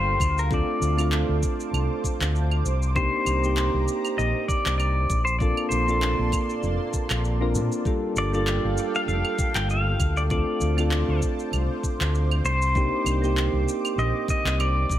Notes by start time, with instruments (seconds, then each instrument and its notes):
Already playing: fingered electric bass G1, synth keys G3 A#3 D4 F4 A4, analog synth pad A4 F5 G5, pedal steel guitar C5
0.20 fingered electric bass D2, kick, claves, shaker
0.38 pedal steel guitar A#4, shaker
0.50 synth keys A3 C4 D4 F4 A4, analog synth pad C5 A5 D6, pedal steel guitar D5, kick, shaker
0.81 fingered electric bass D2, shaker
0.97 synth keys A3 C4 D4 F4 A4, claves, shaker
1.12 clap, shaker
1.29 fingered electric bass D2
1.43 kick, shaker
1.60 shaker
1.73 fingered electric bass C2, claves, shaker
2.04 kick, shaker
2.21 fingered electric bass D2, clap, shaker
2.35 shaker
2.51 claves
2.65 fingered electric bass C2, analog synth pad A#5, shaker
2.82 shaker
2.95 synth keys A#3 C4 D4 D#4 G4, pedal steel guitar C5, kick, shaker
3.26 fingered electric bass C2, claves, shaker
3.43 synth keys A#3 C4 D#4 G4, shaker
3.57 clap, shaker
3.74 fingered electric bass C2
3.88 shaker
4.05 claves, shaker
4.18 fingered electric bass A#1, pedal steel guitar D#5, shaker
4.48 pedal steel guitar D5, kick, shaker
4.66 fingered electric bass C2, clap, shaker
4.78 pedal steel guitar D5, claves, shaker
5.10 fingered electric bass A#1, analog synth pad A#3 D5 A5 C6, kick, shaker
5.25 pedal steel guitar C5, shaker
5.39 synth keys A#3 C4 D4 F4 A4, pedal steel guitar D5, kick, shaker
5.57 claves
5.69 fingered electric bass A#1, pedal steel guitar C5, shaker
5.87 synth keys A#3 C4 D4 F4 A4, shaker
6.02 clap, shaker
6.19 fingered electric bass A#1
6.32 kick, claves, shaker
6.50 shaker
6.63 fingered electric bass F1, shaker
6.93 kick, shaker
7.10 fingered electric bass A#1, clap, claves, shaker
7.25 shaker
7.41 synth keys A#3 C4 D4 F4 A#4
7.55 fingered electric bass A#2, shaker
7.72 shaker
7.84 synth keys G3 A#3 D4 F4 A4, analog synth pad A4 F5 G5, kick, shaker
8.16 fingered electric bass G1, pedal steel guitar D5, shaker
8.32 synth keys G3 A#3 D4 F4 A4, pedal steel guitar D5, shaker
8.47 clap, claves, shaker
8.64 fingered electric bass G1
8.78 shaker
8.95 pedal steel guitar F5, shaker
9.08 fingered electric bass F1, pedal steel guitar F5, shaker
9.25 claves
9.39 kick, shaker
9.55 fingered electric bass G1, pedal steel guitar G5, clap, shaker
9.70 pedal steel guitar F5, shaker
10.00 fingered electric bass D2, kick, claves, shaker
10.17 pedal steel guitar D5, shaker
10.30 synth keys A3 C4 D4 F4 A4, analog synth pad C5 A5 D6, pedal steel guitar D5, kick, shaker
10.61 fingered electric bass D2, shaker
10.77 synth keys A3 C4 D4 F4 A4, claves, shaker
10.91 clap, shaker
11.08 fingered electric bass D2
11.22 kick, shaker
11.39 shaker
11.53 fingered electric bass C2, claves, shaker
11.83 kick, shaker
12.00 fingered electric bass D2, clap, shaker
12.15 shaker
12.31 claves
12.44 fingered electric bass C2, pedal steel guitar C5, shaker
12.62 shaker
12.75 synth keys A#3 C4 D4 D#4 G4, kick, shaker
13.06 fingered electric bass C2, claves, shaker
13.22 synth keys A#3 C4 D#4 G4, shaker
13.37 clap, shaker
13.53 fingered electric bass C2
13.69 shaker
13.85 claves, shaker
13.98 fingered electric bass A#1, pedal steel guitar D#5, shaker
14.28 pedal steel guitar D#5, kick, shaker
14.45 fingered electric bass C2, clap, shaker
14.60 pedal steel guitar D5, claves, shaker
14.88 fingered electric bass A#1, analog synth pad C5 A5, kick, shaker